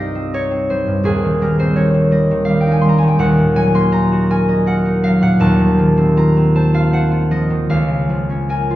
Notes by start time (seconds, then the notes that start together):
Already playing: C2 G2 G3 C4 D#4 G4 C5 D#5 F5
0.15 C4
0.34 D#4 C#5
0.51 C4
0.70 G3 C5
0.86 G2
1.04 D#1 D#2 G#4
1.24 D#3
1.41 G3 A#4
1.59 C4 C5
1.76 D#4 C#5
1.94 C4
2.11 G3 D#5
2.31 D#3
2.45 F5
2.49 G3
2.60 G5
2.66 D#4
2.72 G#5
2.81 G3 C6
2.89 A#5
2.98 G#5
3.03 D#3
3.08 G5
3.19 D#1 D#2 F#5
3.38 A#2
3.55 F#3 G#5
3.74 A#3 C6
3.92 D#4 A#5
4.12 F#4
4.30 A#4 G#5
4.49 D#5
4.66 A#4 F#5
4.85 D#4
5.03 F#3 F5
5.22 A#2 F#5
5.39 D#1 D#2 A5
5.59 D#3
5.79 F3
5.97 C4
6.17 F4 A#5
6.37 C4
6.55 C5 A5
6.74 F4 F5
6.93 C5 F#5
7.12 F4
7.31 F3 D#5
7.50 D#3
7.69 C#2 F5
7.88 C#3
8.09 F3
8.30 C#4
8.49 A#4 G#5
8.70 F4